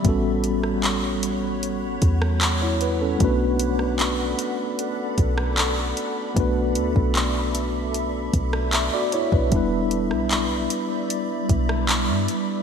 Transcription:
Already playing: ambient pad G3
0.03 808-style bass A1, tine electric piano G3 B3 C#4, ambient pad C#5 F#5 B5, kick, closed hi-hat
0.07 tine electric piano F#4 A4
0.44 closed hi-hat
0.63 cross-stick
0.84 clap, closed hi-hat
1.23 closed hi-hat
1.63 closed hi-hat
2.02 808-style bass E2, kick, closed hi-hat
2.22 cross-stick
2.41 clap, closed hi-hat
2.62 tine electric piano E4 C#5
2.81 tine electric piano B4, closed hi-hat
3.02 tine electric piano C#4 A4
3.19 808-style bass B1, tine electric piano A3 B3 D4, ambient pad A4 D5, kick, closed hi-hat
3.23 tine electric piano F#4 B4
3.59 closed hi-hat
3.79 cross-stick
3.99 clap, closed hi-hat
4.39 closed hi-hat
4.79 closed hi-hat
5.18 808-style bass B1, kick, closed hi-hat
5.38 cross-stick
5.58 clap, closed hi-hat
5.97 closed hi-hat
6.35 808-style bass B1, tine electric piano A3 B3 D4, ambient pad E5, kick, closed hi-hat
6.39 tine electric piano F#4 B4
6.75 808-style bass D2, closed hi-hat
6.96 808-style bass B1, kick
7.15 clap, closed hi-hat
7.55 closed hi-hat
7.94 closed hi-hat
8.34 808-style bass B1, kick, closed hi-hat
8.53 cross-stick
8.73 tine electric piano E5, clap, closed hi-hat
8.94 tine electric piano F#4 D5
9.12 tine electric piano E4 C#5, closed hi-hat
9.32 808-style bass B1, tine electric piano D4 B4, kick
9.50 808-style bass E1, tine electric piano G3 B3 D4, ambient pad G3 D5, kick, closed hi-hat
9.55 tine electric piano E4 B4
9.91 closed hi-hat
10.11 808-style bass B1, cross-stick
10.31 clap, closed hi-hat
10.70 closed hi-hat
11.10 closed hi-hat
11.49 808-style bass B1, kick, closed hi-hat
11.69 cross-stick
11.89 clap, closed hi-hat
12.09 808-style bass G2
12.28 closed hi-hat

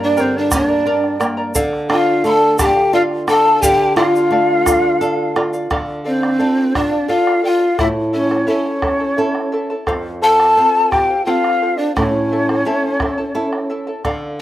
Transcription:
Already playing: nylon-string guitar G2 A#3
0.00 pan flute D4, charango A#4 D5 A#5, quena D5
0.17 nylon-string guitar D3, pan flute C4, charango G4 A#4 D5 G5 A#5, quena C5, shaker
0.36 pan flute D4, quena D5
0.51 nylon-string guitar A#3, pan flute D4, charango A#4 D5 G5 A#5, quena D5, bombo rim, bombo low, shaker
0.68 charango A#4 D5 A#5
0.86 nylon-string guitar D4, charango A#4 D5 G5 A#5
1.04 bombo rim
1.20 nylon-string guitar A#3, charango A#4 D5 G5 A#5, bombo rim, shaker
1.37 charango A#4 D5 A#5
1.55 nylon-string guitar D3, charango A4 D5 F5, bombo low, shaker
1.73 bombo rim
1.89 nylon-string guitar D4, pan flute F4, charango A4 D5 F5, quena G5, bombo rim
1.96 quena F5
2.06 charango D5 F5
2.24 nylon-string guitar A3, charango A4 D5 F5, pan flute A4, quena C6, shaker
2.30 quena A5
2.57 nylon-string guitar D4, pan flute G4, charango A4 D5 F5, quena A5, bombo rim, bombo low, shaker
2.64 quena G5
2.76 charango D5 F5, bombo rim
2.93 nylon-string guitar F4, pan flute F4, charango A4 D5 F5, quena F5
3.11 bombo rim
3.27 nylon-string guitar D4, charango A4 D5 F5, pan flute A4, quena A5, bombo rim, shaker
3.45 charango D5 F5
3.61 nylon-string guitar D3, pan flute G4, charango A4 D5 F5, quena G5, bombo low, shaker
3.96 nylon-string guitar F4, pan flute F4, charango A4 D5 F5, quena F5, bombo rim
4.14 charango D5 F5, bombo rim, shaker
4.31 nylon-string guitar A3, charango A4 D5 F5, bombo rim
4.50 bombo rim
4.66 nylon-string guitar F4, charango A4 D5 F5, bombo rim, bombo low, shaker
4.83 charango D5 F5, bombo rim
5.01 charango A4 D5 F5, nylon-string guitar A4, shaker
5.36 nylon-string guitar F4, charango A4 D5 F5, bombo rim
5.53 charango D5 F5, bombo rim, shaker
5.70 nylon-string guitar D3, charango A4 D5 F5, bombo rim, bombo low
6.05 pan flute C4, charango A4 D5 F5, quena C5
6.22 charango D5 F5, bombo rim
6.38 nylon-string guitar D4 F4 A4, charango A4 D5 F5
6.58 bombo rim
6.74 pan flute D4, charango A4 D5 F5, quena D5, bombo rim, bombo low
6.91 charango D5 F5
7.08 nylon-string guitar D4 F4 A4, pan flute F4, charango A4 D5 F5, quena F5, bombo rim
7.27 bombo rim
7.43 pan flute F4, charango A4 D5 F5, quena G5, bombo rim
7.47 quena F5
7.60 charango D5 F5
7.77 nylon-string guitar A2, charango E4 A4 E5 A5, pan flute E4, quena E5, bombo rim, bombo low
8.13 pan flute C#4, charango E4 A4 E5 A5, quena C#5
8.30 charango E4 A4 A5, bombo rim
8.47 nylon-string guitar C#4 E4 A4, pan flute C#4, charango E4 A4 C#5 E5 A5, quena C#5
8.66 bombo rim
8.82 charango E4 A4 E5 A5, bombo rim, bombo low
8.99 charango E4 A4 A5
9.16 nylon-string guitar C#4 E4 A4, charango E4 A4 E5 A5, bombo rim
9.35 bombo rim
9.52 charango E4 A4 E5 A5, bombo rim
9.70 charango E4 A4 A5
9.87 nylon-string guitar F2, charango A4 C5 F5, bombo rim, bombo low
10.22 charango A4 C5 F5, pan flute A4, quena A5
10.39 charango C5 F5, bombo rim
10.56 nylon-string guitar C4 F4 A4, charango A4 C5 F5
10.75 bombo rim
10.91 pan flute G4, charango A4 C5 F5, quena G5, bombo rim, bombo low
11.09 charango C5 F5
11.25 nylon-string guitar C4 F4 A4, pan flute F4, charango A4 C5 F5, quena G5, bombo rim
11.29 quena F5
11.44 bombo rim
11.62 charango A4 C5 F5, bombo rim
11.77 pan flute D4, charango C5 F5, quena D5
11.95 nylon-string guitar A2, pan flute C#4, charango E4 A4 E5 A5, quena C#5, bombo rim, bombo low
12.32 charango E4 A4 E5 A5
12.49 charango E4 A4 A5, bombo rim
12.65 nylon-string guitar C#4 E4 A4, charango E4 A4 C#5 E5 A5
12.83 bombo rim
13.00 charango E4 A4 E5 A5, bombo rim, bombo low
13.18 charango E4 A4 A5
13.35 nylon-string guitar C#4 E4 A4, charango E4 A4 E5 A5
13.53 bombo rim
13.70 charango E4 A4 E5 A5
13.87 charango E4 A4 A5
14.05 nylon-string guitar D3, charango A4 D5 F5, bombo rim, bombo low

